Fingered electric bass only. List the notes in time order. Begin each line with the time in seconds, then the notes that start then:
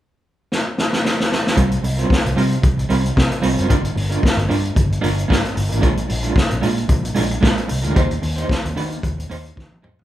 1.57 C2
1.84 C2
2.26 C2
2.37 C3
2.64 C2
2.90 C2
3.17 C3
3.43 C2
3.59 F#1
3.70 G1
3.96 G1
4.37 G1
4.50 G2
4.77 G1
5.04 G1
5.30 G2
5.57 G1
5.72 A1
5.83 A#1
6.10 A#1
6.52 A#1
6.63 A#2
6.90 A#1
7.17 A#1
7.43 A#2
7.71 C2
7.85 D2
7.96 D#2
8.23 D#2
8.65 D#2
8.77 D#3
9.03 D#2
9.31 D#2
9.58 D#3
9.84 F2
9.99 D2